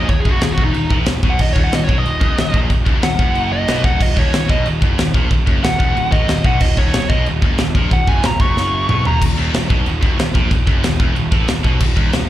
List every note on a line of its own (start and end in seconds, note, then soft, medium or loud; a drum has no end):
0.09 0.24 D#1 medium
0.09 0.22 D#2 medium
0.09 0.20 C#5 medium
0.09 kick loud
0.09 china medium
0.20 0.30 G#4 medium
0.25 0.41 F#1 loud
0.25 0.41 F#2 loud
0.25 kick loud
0.31 0.41 F#4 medium
0.41 0.57 D#1 medium
0.41 0.55 D#2 medium
0.41 0.52 G#4 loud
0.41 snare loud
0.41 china medium
0.52 0.63 F#4 loud
0.58 0.73 E1 loud
0.58 0.74 E2 loud
0.58 kick loud
0.65 0.96 D#4 loud
0.74 0.90 D#1 medium
0.74 0.87 D#2 medium
0.74 china medium
0.90 1.06 A1 loud
0.90 1.06 A2 loud
0.90 kick loud
1.06 1.22 D#1 medium
1.06 1.20 D#2 medium
1.06 snare loud
1.06 china medium
1.23 1.38 B1 loud
1.23 1.39 B2 loud
1.23 kick loud
1.30 1.40 F#5 loud
1.39 1.55 D#1 medium
1.39 1.52 D#2 medium
1.39 1.53 D#5 medium
1.39 kick loud
1.39 china medium
1.39 crash loud
1.53 1.71 D#1 loud
1.53 1.71 D#2 loud
1.53 1.62 C#5 medium
1.53 kick loud
1.64 1.73 F#5 medium
1.72 1.87 D#1 medium
1.72 1.85 D#2 medium
1.72 1.84 D#5 medium
1.72 snare loud
1.72 china medium
1.85 2.04 B2 loud
1.85 1.98 C#5 medium
1.89 2.03 B1 medium
1.89 kick loud
1.98 2.59 D#5 loud
2.04 2.20 D#1 medium
2.04 2.18 D#2 medium
2.04 china medium
2.20 2.36 F#1 loud
2.20 2.37 F#2 loud
2.20 kick loud
2.37 2.53 D#1 medium
2.37 2.50 D#2 medium
2.37 snare loud
2.37 china medium
2.53 2.69 A#1 loud
2.53 2.69 A#2 loud
2.53 kick loud
2.70 2.85 D#1 medium
2.70 2.83 D#2 medium
2.70 kick loud
2.70 china medium
2.85 3.02 F#1 loud
2.85 3.01 F#2 loud
2.85 kick loud
3.02 3.18 D#1 medium
3.02 3.15 D#2 medium
3.02 3.51 F#5 loud
3.02 snare loud
3.02 china medium
3.19 3.65 F#1 medium
3.19 3.67 F#2 loud
3.19 kick loud
3.35 china medium
3.53 3.84 D#5 loud
3.68 3.84 B1 medium
3.68 3.84 B2 loud
3.68 snare loud
3.68 china medium
3.83 4.00 D#1 loud
3.83 3.99 D#2 loud
3.83 4.02 F#5 medium
3.83 kick loud
4.00 4.16 D#1 medium
4.00 4.13 D#2 medium
4.00 4.18 D#5 loud
4.00 kick loud
4.00 china medium
4.00 crash loud
4.16 4.32 D#1 loud
4.16 4.31 D#2 loud
4.16 4.49 C#5 medium
4.16 kick loud
4.32 4.49 D#1 medium
4.32 4.46 D#2 medium
4.32 snare loud
4.32 china medium
4.49 4.65 B1 loud
4.49 4.65 B2 loud
4.49 4.66 D#5 loud
4.49 kick loud
4.65 4.81 D#1 medium
4.65 4.78 D#2 medium
4.65 china medium
4.81 4.97 F#1 loud
4.81 4.97 F#2 loud
4.81 kick loud
4.98 5.13 D#1 medium
4.98 5.11 D#2 medium
4.98 snare loud
4.98 china medium
5.14 5.30 A#1 loud
5.14 5.30 A#2 loud
5.14 kick loud
5.30 5.46 D#1 medium
5.30 5.43 D#2 medium
5.30 kick loud
5.30 china medium
5.46 5.63 F#1 medium
5.46 5.62 F#2 loud
5.46 kick loud
5.63 5.79 D#1 medium
5.63 5.76 D#2 medium
5.63 6.11 F#5 loud
5.63 snare loud
5.63 china medium
5.79 5.95 E1 loud
5.79 5.95 E2 loud
5.79 kick loud
5.95 6.11 D#1 medium
5.95 6.08 D#2 medium
5.95 china medium
6.11 6.28 A1 loud
6.11 6.28 A2 loud
6.11 6.44 D#5 loud
6.11 kick loud
6.28 6.44 D#1 medium
6.28 6.41 D#2 medium
6.28 snare loud
6.28 china medium
6.44 6.60 B1 loud
6.44 6.60 B2 loud
6.44 6.61 F#5 medium
6.44 kick loud
6.60 6.76 D#1 medium
6.60 6.74 D#2 medium
6.60 6.77 D#5 loud
6.60 kick loud
6.60 china medium
6.60 crash loud
6.77 6.93 D#1 loud
6.77 6.93 D#2 loud
6.77 7.09 C#5 medium
6.77 kick loud
6.93 7.09 D#1 medium
6.93 7.07 D#2 medium
6.93 snare loud
6.93 china medium
7.09 7.25 B1 medium
7.09 7.26 B2 loud
7.09 7.25 D#5 loud
7.09 kick loud
7.26 7.41 D#1 medium
7.26 7.40 D#2 medium
7.26 china medium
7.42 7.58 F#1 loud
7.42 7.58 F#2 loud
7.42 kick loud
7.58 7.74 D#1 medium
7.58 7.72 D#2 medium
7.58 snare loud
7.58 china medium
7.75 7.90 A#1 loud
7.75 7.91 A#2 loud
7.75 kick loud
7.91 8.07 D#1 medium
7.91 8.04 D#2 medium
7.91 8.08 F#5 loud
7.91 kick loud
7.91 china medium
8.07 8.23 F#1 loud
8.07 8.23 F#2 loud
8.07 8.25 G#5 medium
8.07 kick loud
8.23 8.39 D#1 medium
8.23 8.37 D#2 medium
8.23 8.40 A#5 medium
8.23 snare loud
8.23 china medium
8.40 8.85 F#1 loud
8.40 8.89 F#2 loud
8.40 9.04 C#6 loud
8.40 kick loud
8.57 snare medium
8.89 9.04 B1 loud
8.89 9.04 B2 loud
8.89 mid tom loud
9.05 9.20 D#1 loud
9.05 9.20 D#2 loud
9.05 9.21 A#5 loud
9.05 floor tom medium
9.21 9.37 D#1 medium
9.21 9.34 D#2 medium
9.21 kick loud
9.21 crash loud
9.21 china medium
9.37 9.53 D#1 loud
9.37 9.52 D#2 loud
9.53 9.69 D#1 medium
9.53 9.66 D#2 medium
9.53 snare loud
9.53 china medium
9.69 9.85 B1 medium
9.69 9.85 B2 loud
9.69 kick loud
9.85 10.01 D#1 medium
9.85 9.99 D#2 medium
9.85 china medium
10.01 10.17 F#1 loud
10.01 10.17 F#2 loud
10.01 kick loud
10.18 10.34 D#1 medium
10.18 10.31 D#2 medium
10.18 snare loud
10.18 china medium
10.35 10.50 A#1 loud
10.35 10.50 A#2 loud
10.35 kick loud
10.51 10.66 D#1 medium
10.51 10.64 D#2 medium
10.51 kick loud
10.51 china medium
10.67 10.82 F#1 loud
10.67 10.83 F#2 loud
10.67 kick loud
10.83 10.99 D#1 medium
10.83 10.96 D#2 medium
10.83 snare loud
10.83 china medium
11.00 11.15 E1 loud
11.00 11.15 E2 loud
11.00 kick loud
11.15 11.31 D#1 medium
11.15 11.28 D#2 medium
11.15 china medium
11.32 11.47 A1 loud
11.32 11.47 A2 loud
11.32 kick loud
11.48 11.64 D#1 medium
11.48 11.61 D#2 medium
11.48 snare loud
11.48 china medium
11.64 11.79 B1 loud
11.64 11.80 B2 loud
11.64 kick loud
11.80 11.96 D#1 medium
11.80 11.93 D#2 medium
11.80 kick loud
11.80 crash loud
11.80 china medium
11.96 12.12 D#1 loud
11.96 12.12 D#2 loud
11.96 kick loud
12.13 12.28 D#1 medium
12.13 12.26 D#2 medium
12.13 snare loud
12.13 china medium